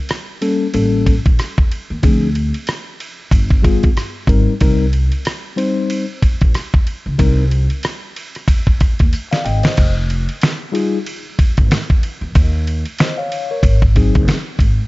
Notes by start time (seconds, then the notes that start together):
0.09 cross-stick, hi-hat pedal, ride
0.41 G3 A#3 C#4 A4, ride
0.73 A1 G3 A#3 C#4 A4, ride
1.06 kick, ride
1.26 A#1, kick, ride
1.39 cross-stick, hi-hat pedal, ride
1.58 kick
1.72 ride
1.90 D#2
2.03 D2 F3 C4 D4 G#4, kick, ride
2.35 ride
2.54 ride
2.67 cross-stick, hi-hat pedal, ride
3.00 ride
3.31 G1, kick, ride
3.50 kick
3.62 G3 B3 F4 G#4, kick, ride
3.83 kick, ride
3.97 cross-stick, hi-hat pedal, ride
4.27 G#1 G3 C4 D#4 A#4, kick, ride
4.60 C2 G3 C4 D#4 A#4, kick, ride
4.93 ride
5.12 ride
5.25 cross-stick, hi-hat pedal, ride
5.56 G3 C4 D#4 C5, ride
5.90 ride
6.22 kick, ride
6.41 A#1, kick, ride
6.54 cross-stick, hi-hat pedal, ride
6.74 kick
6.87 ride
7.06 C#2
7.18 C2 G3 C4 D#4 A#4, kick, ride
7.51 ride
7.70 ride
7.83 cross-stick, hi-hat pedal, ride
8.16 ride
8.35 cross-stick, ride
8.48 kick, ride
8.67 kick
8.80 kick, cross-stick, ride
8.99 D#2, kick, ride
9.13 hi-hat pedal, ride
9.31 D5 F5, snare
9.45 G#1 D#5 G5, ride
9.63 C5 D#5, snare, ride
9.77 F1, kick, crash, ride
10.10 ride
10.29 ride
10.42 snare, hi-hat pedal, ride
10.72 G3 D#4 F4 G#4, ride
11.06 ride
11.39 kick, ride
11.57 G#1, kick, ride
11.71 snare, hi-hat pedal, ride
11.90 kick
12.03 ride
12.21 E2
12.35 D#2, kick, ride
12.67 ride
12.85 ride
12.98 C5 D#5, snare, hi-hat pedal, ride
13.18 C#5 F5
13.32 ride
13.51 A#4 C#5
13.63 G#1, kick, ride
13.82 kick
13.95 F#3 C4 D#4 G#4, kick, ride
14.15 F#1, kick, ride
14.28 snare, hi-hat pedal, ride
14.59 G#1, kick, ride